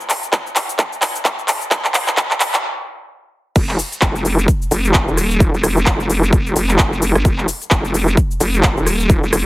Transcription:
0.00 shaker
0.10 clap, open hi-hat, shaker
0.23 closed hi-hat, shaker
0.33 kick, clap, closed hi-hat, shaker
0.47 shaker
0.56 clap, open hi-hat, shaker
0.69 closed hi-hat, shaker
0.79 kick, clap, closed hi-hat, shaker
0.93 shaker
1.02 clap, open hi-hat, shaker
1.15 closed hi-hat, shaker
1.25 kick, clap, closed hi-hat, shaker
1.39 shaker
1.48 clap, open hi-hat, shaker
1.61 closed hi-hat, shaker
1.71 kick, clap, closed hi-hat, shaker
1.85 clap, shaker
1.94 clap, open hi-hat, shaker
2.08 clap, closed hi-hat, shaker
2.17 kick, clap, closed hi-hat, shaker
2.31 clap, shaker
2.40 clap, open hi-hat, shaker
2.54 clap, closed hi-hat, shaker
3.56 wobble bass F1, kick, closed hi-hat, crash, shaker
3.69 clap, shaker
3.79 open hi-hat, shaker
3.92 closed hi-hat, shaker
4.02 wobble bass F1, kick, clap, closed hi-hat, shaker
4.15 closed hi-hat, shaker
4.25 open hi-hat, shaker
4.38 closed hi-hat, shaker
4.48 kick, closed hi-hat, shaker
4.62 shaker
4.71 wobble bass F1, open hi-hat, shaker
4.85 closed hi-hat, shaker
4.94 wobble bass F1, kick, clap, closed hi-hat, shaker
5.08 wobble bass D#1, shaker
5.17 cross-stick, open hi-hat, shaker
5.31 closed hi-hat, shaker
5.40 kick, closed hi-hat, shaker
5.54 wobble bass F1, shaker
5.63 cross-stick, open hi-hat, shaker
5.77 closed hi-hat, shaker
5.86 wobble bass F1, kick, clap, closed hi-hat, shaker
6.00 closed hi-hat, shaker
6.10 open hi-hat, shaker
6.23 closed hi-hat, shaker
6.33 wobble bass F1, kick, closed hi-hat, shaker
6.47 shaker
6.56 wobble bass F1, open hi-hat, shaker
6.69 clap, closed hi-hat, shaker
6.79 kick, clap, closed hi-hat, shaker
6.93 shaker
7.02 open hi-hat, shaker
7.15 wobble bass G1, cross-stick, closed hi-hat, shaker
7.25 wobble bass F1, kick, closed hi-hat, shaker
7.38 clap, shaker
7.48 open hi-hat, shaker
7.62 closed hi-hat, shaker
7.71 wobble bass F1, kick, clap, closed hi-hat, shaker
7.85 closed hi-hat, shaker
7.94 open hi-hat, shaker
8.08 closed hi-hat, shaker
8.17 kick, closed hi-hat, shaker
8.31 shaker
8.40 wobble bass F1, open hi-hat, shaker
8.54 closed hi-hat, shaker
8.63 wobble bass F1, kick, clap, closed hi-hat, shaker
8.77 wobble bass D#1, shaker
8.86 cross-stick, open hi-hat, shaker
9.00 closed hi-hat, shaker
9.10 kick, closed hi-hat, shaker
9.23 wobble bass F1, shaker
9.33 cross-stick, open hi-hat, shaker

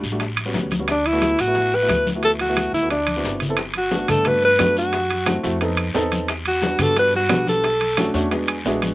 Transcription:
0.03 upright bass A1, high bongo, high conga, short guiro
0.12 grand piano G3 A3 D4 F#4
0.20 high bongo, high conga, high timbale, long guiro
0.37 high conga, high timbale, claves
0.45 grand piano G3 B3 C#4 F#4
0.54 upright bass D2, high bongo, low bongo, high conga, short guiro
0.71 high bongo, high conga, high timbale, short guiro
0.79 grand piano G3 B3 C#4 F#4
0.88 alto saxophone D4, high bongo, high conga, high timbale, long guiro, claves
1.06 alto saxophone E4, high conga, high timbale
1.13 grand piano A3 B3 E4 F#4
1.22 high bongo, high conga, high timbale, short guiro
1.39 upright bass A1, alto saxophone F#4, high conga, high timbale, short guiro, claves
1.48 grand piano A3 B3 E4 F#4
1.55 high bongo, high conga, long guiro
1.73 alto saxophone B4, high conga
1.82 grand piano A3 B3 E4 F#4
1.89 upright bass D2, high bongo, low bongo, high conga, high timbale, short guiro, claves
2.07 high conga, short guiro
2.15 grand piano A3 B3 E4 F#4
2.23 alto saxophone A4, high bongo, high conga, high timbale, long guiro
2.39 alto saxophone F#4, high bongo, high conga, high timbale
2.49 grand piano A3 B3 E4 F#4
2.57 high bongo, high conga, high timbale, short guiro, claves
2.73 upright bass D2, alto saxophone E4, high bongo, high conga, short guiro
2.82 grand piano A3 B3 E4 F#4
2.90 alto saxophone D4, high bongo, high conga, high timbale, long guiro
3.07 high conga, high timbale, claves
3.16 grand piano B3 C4 E4 F#4
3.24 upright bass G1, high bongo, low bongo, short guiro
3.40 high bongo, low conga, high timbale, short guiro
3.49 grand piano B3 C4 E4 A4
3.57 high bongo, high conga, high timbale, long guiro, claves
3.74 high conga, high timbale
3.78 alto saxophone F#4
3.91 grand piano A3 B3 D4 F#4, high bongo, high conga, low timbale, short guiro
4.08 upright bass G2, grand piano A3 B3 D4 A4, alto saxophone A4, low conga, high timbale, short guiro, claves
4.25 grand piano A3 B3 D4 F#4, alto saxophone B4, high bongo, high conga, low conga, high timbale, long guiro
4.43 alto saxophone B4, high conga
4.58 upright bass F#2, grand piano A3 B3 D4 F#4, high bongo, low bongo, high conga, high timbale, low timbale, short guiro, claves
4.77 alto saxophone F#4, short guiro
4.93 high bongo, high conga, high timbale, long guiro
5.11 high bongo, high conga, high timbale
5.26 grand piano A3 C4 E4 F#4, high bongo, high conga, high timbale, low timbale, short guiro, claves
5.43 upright bass F2, grand piano A3 C4 E4 F#4, high bongo, short guiro
5.61 grand piano B3 C4 D#4 A4, high bongo, high conga, high timbale, long guiro
5.77 high bongo, high conga, high timbale, claves
5.94 upright bass E2, grand piano B3 C4 D#4 A4, high bongo, low bongo, high conga, low timbale, short guiro
6.12 high conga, high timbale, short guiro
6.28 high bongo, high conga, high timbale, long guiro, claves
6.45 alto saxophone F#4, high conga, high timbale
6.62 grand piano G3 B3 D4 F#4, high bongo, high conga, low timbale, short guiro
6.79 upright bass G2, grand piano G3 B3 D4 F#4, alto saxophone A4, low conga, high timbale, short guiro, claves
6.96 grand piano G3 B3 D4 F#4, alto saxophone B4, high bongo, high conga, high timbale, long guiro
7.13 alto saxophone F#4, high conga
7.29 upright bass B1, grand piano G3 B3 D4 F#4, high bongo, low bongo, high conga, high timbale, low timbale, short guiro, claves
7.47 alto saxophone A4, high conga, short guiro
7.64 high bongo, high conga, high timbale, long guiro
7.80 high bongo, high conga, high timbale
7.97 grand piano A3 C#4 D4 F#4, high bongo, high conga, high timbale, low timbale, short guiro, claves
8.14 upright bass E2, grand piano A3 C#4 D4 F#4, high bongo, short guiro
8.31 grand piano G#3 B3 F#4, high bongo, high conga, high timbale, long guiro
8.48 grand piano G#5, high bongo, high conga, high timbale, claves
8.65 upright bass A1, grand piano G#3 B3 D4 F#4 E5, high bongo, low bongo, high conga, low timbale, short guiro
8.82 high conga, high timbale, short guiro

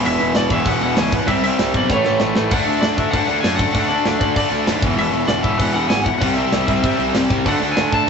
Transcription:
Already playing: distorted electric guitar E2 B2 E3
0.03 picked electric bass E1, overdriven electric guitar E2 B2 E3, lead electric guitar E5, crash
0.19 picked electric bass E1, overdriven electric guitar E2 B2 E3, crash
0.35 picked electric bass E1, overdriven electric guitar E2 B2 E3, lead electric guitar D5, snare, crash
0.50 picked electric bass E1, overdriven electric guitar E2 B2 E3, lead electric guitar E5, kick, crash
0.65 picked electric bass E1, overdriven electric guitar E2 B2 E3, lead electric guitar F#5, kick, crash
0.81 picked electric bass E1, overdriven electric guitar E2 B2 E3, lead electric guitar F#5, crash
0.97 picked electric bass C#2, overdriven electric guitar E2 B2 E3, lead electric guitar G#5, snare, crash
1.12 overdriven electric guitar E2 B2 E3, lead electric guitar F#5, kick, crash
1.27 picked electric bass C2, overdriven electric guitar C3 G3 C4, lead electric guitar E5, kick, crash
1.43 overdriven electric guitar C3 G3 C4, lead electric guitar E5, crash
1.59 picked electric bass C2, overdriven electric guitar C3 G3 C4, snare, crash
1.74 picked electric bass B1, overdriven electric guitar C3 G3 C4, lead electric guitar D5, kick, crash
1.90 picked electric bass A1, overdriven electric guitar A2 E3 A3, lead electric guitar C#5, kick, snare
2.05 picked electric bass A1, overdriven electric guitar A2 E3 A3, snare
2.20 picked electric bass A1, overdriven electric guitar A2 E3 A3, snare
2.35 picked electric bass A1, overdriven electric guitar A2 E3 A3, snare
2.51 picked electric bass D2, overdriven electric guitar D3 A3 D4, lead electric guitar F#5, kick, crash
2.66 picked electric bass D2, overdriven electric guitar D3 A3 D4, lead electric guitar E5, crash
2.81 picked electric bass D2, overdriven electric guitar D3 A3 D4, lead electric guitar D5, snare, crash
2.97 picked electric bass D2, overdriven electric guitar D3 A3 D4, lead electric guitar E5, kick, crash
3.11 picked electric bass D2, overdriven electric guitar D3 A3 D4, lead electric guitar F#5, kick, crash
3.25 picked electric bass D2, overdriven electric guitar D3 A3 D4, lead electric guitar F#5, crash
3.40 picked electric bass F#2, overdriven electric guitar D3 A3 D4, lead electric guitar G#5, snare, crash
3.56 overdriven electric guitar D3 A3 D4, lead electric guitar F#5, kick, crash
3.72 picked electric bass D2, overdriven electric guitar D3 A3 D4, lead electric guitar F#5, kick, crash
3.88 overdriven electric guitar D3 A3 D4, lead electric guitar D5, crash
4.04 picked electric bass D2, overdriven electric guitar D3 A3 D4, snare, crash
4.19 picked electric bass D2, overdriven electric guitar D3 A3 D4, lead electric guitar D5, kick, crash
4.35 overdriven electric guitar D3 A3 D4, picked electric bass D3, lead electric guitar D5, kick, crash
4.50 picked electric bass D2, overdriven electric guitar D3 A3 D4, crash
4.66 picked electric bass D#2, overdriven electric guitar D3 A3 D4, snare, crash
4.81 picked electric bass E1, overdriven electric guitar E2 B2 E3, kick, crash
4.96 picked electric bass E1, overdriven electric guitar E2 B2 E3, lead electric guitar E5, crash
5.12 picked electric bass E1, overdriven electric guitar E2 B2 E3, crash
5.28 picked electric bass E1, overdriven electric guitar E2 B2 E3, lead electric guitar D5, snare, crash
5.43 picked electric bass E1, overdriven electric guitar E2 B2 E3, lead electric guitar E5, kick, crash
5.58 picked electric bass E1, overdriven electric guitar E2 B2 E3, lead electric guitar F#5, kick, crash
5.74 picked electric bass E1, overdriven electric guitar E2 B2 E3, lead electric guitar F#5, crash
5.89 picked electric bass G#1, overdriven electric guitar E2 B2 E3, lead electric guitar G#5, snare, crash
6.04 overdriven electric guitar E2 B2 E3, lead electric guitar F#5, kick, crash
6.18 picked electric bass C2, overdriven electric guitar C3 G3, lead electric guitar F#5, kick, crash
6.22 overdriven electric guitar C4
6.34 overdriven electric guitar G3 C4, lead electric guitar E5, crash
6.38 overdriven electric guitar C3
6.52 picked electric bass C2, overdriven electric guitar C3 G3 C4, snare, crash
6.66 picked electric bass C2, overdriven electric guitar C3 G3 C4, lead electric guitar E5, kick, crash
6.83 overdriven electric guitar C3 G3 C4, picked electric bass C3, lead electric guitar E5, kick, crash
6.97 picked electric bass C2, overdriven electric guitar C3 G3 C4, crash
7.13 picked electric bass C2, overdriven electric guitar C3 G3 C4, snare, crash
7.30 picked electric bass C2, overdriven electric guitar C3 G3 C4, kick, crash
7.45 picked electric bass D2, overdriven electric guitar D3 A3 D4, lead electric guitar F#5, kick, crash
7.61 picked electric bass D2, overdriven electric guitar D3 A3 D4, crash
7.72 lead electric guitar G#5
7.77 picked electric bass D2, overdriven electric guitar D3 A3 D4, snare, crash
7.92 picked electric bass D2, overdriven electric guitar D3 A3 D4, lead electric guitar A5, kick, crash

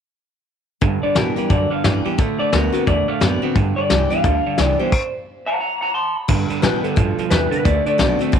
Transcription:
0.81 steel-string acoustic guitar G2, upright bass G2, clean electric guitar G2 D3, kick, closed hi-hat
1.03 clean electric guitar G2 D3 D5, muted upright bass stroke
1.15 clean electric guitar G2 E3 A#4, upright bass B2, steel-string acoustic guitar D3 G3 B3 G4, snare, closed hi-hat
1.36 clean electric guitar G2 E3, steel-string acoustic guitar B3 G4, muted upright bass stroke, closed hi-hat
1.50 upright bass F#2, clean electric guitar G2 D3 D5, steel-string acoustic guitar D3, kick, closed hi-hat
1.70 clean electric guitar G2 D3 F5, muted upright bass stroke
1.84 clean electric guitar G2 E3 D5, upright bass G2, steel-string acoustic guitar D3 G3 B3 G4, snare, closed hi-hat
2.05 clean electric guitar G2 E3, steel-string acoustic guitar B3 G4, muted upright bass stroke
2.18 upright bass A2, clean electric guitar D3 A3, steel-string acoustic guitar D3, kick, closed hi-hat
2.39 clean electric guitar D3 A3 D5, muted upright bass stroke
2.52 upright bass D2, clean electric guitar D3 B3 A#4, steel-string acoustic guitar D3 A3 C4 F#4, snare, closed hi-hat
2.72 clean electric guitar D3 B3, steel-string acoustic guitar C4 F#4, closed hi-hat
2.87 upright bass E2, steel-string acoustic guitar A2, clean electric guitar D3 A3 D5, kick, closed hi-hat
3.08 clean electric guitar D3 A3 F5, muted upright bass stroke
3.20 upright bass F#2, steel-string acoustic guitar D3 A3 C4 F#4, clean electric guitar D3 B3 D5, snare, closed hi-hat
3.42 clean electric guitar D3 B3, steel-string acoustic guitar C4 F#4, muted upright bass stroke
3.55 steel-string acoustic guitar G2, upright bass G2, clean electric guitar G2 D3, kick, closed hi-hat
3.76 clean electric guitar G2 D3 D5, muted upright bass stroke
3.90 upright bass C2, clean electric guitar G2 E3, steel-string acoustic guitar D3 G3 B3 G4, snare, closed hi-hat
4.10 clean electric guitar G2 E3 F5, steel-string acoustic guitar B3 G4, closed hi-hat
4.24 upright bass D2, clean electric guitar G2 D3, steel-string acoustic guitar D3, kick, closed hi-hat
4.46 clean electric guitar G2 D3
4.58 upright bass C2, clean electric guitar G2 E3 D5, steel-string acoustic guitar D3 G3 B3 G4, snare, closed hi-hat
4.79 clean electric guitar G2 E3 C5, steel-string acoustic guitar B3 G4, muted upright bass stroke
4.92 kick, crash
5.46 clean electric guitar F#5 A#5
5.60 clean electric guitar F#5 A#5
5.81 clean electric guitar F#5 A#5
5.94 clean electric guitar A5 C6
6.16 clean electric guitar B5
6.28 steel-string acoustic guitar G2, upright bass G2, clean electric guitar G2 D3, kick, crash
6.50 clean electric guitar G2 D3, muted upright bass stroke, closed hi-hat
6.62 clean electric guitar G2 E3 B4, upright bass B2, steel-string acoustic guitar D3 G3 B3 G4, snare, closed hi-hat
6.84 clean electric guitar G2 D3 A4, muted upright bass stroke, closed hi-hat
6.96 upright bass G2, clean electric guitar G2 F3, steel-string acoustic guitar B2, kick, closed hi-hat
7.18 clean electric guitar G2 F3, muted upright bass stroke, closed hi-hat
7.30 upright bass E2, clean electric guitar G2 E3 B4, steel-string acoustic guitar C3, snare, closed hi-hat
7.51 clean electric guitar G2 D3 B4, muted upright bass stroke, closed hi-hat
7.65 upright bass D2, clean electric guitar D3 A3 D5, steel-string acoustic guitar D3, kick, closed hi-hat
7.86 clean electric guitar D3 A3 D5, closed hi-hat
7.98 upright bass B1, steel-string acoustic guitar D3 A3 C4 F#4, clean electric guitar D3 B3, snare, closed hi-hat
8.19 clean electric guitar D3 A3, steel-string acoustic guitar C4 F#4, muted upright bass stroke, closed hi-hat
8.32 upright bass A1, steel-string acoustic guitar A2, clean electric guitar D3 C4, kick, closed hi-hat

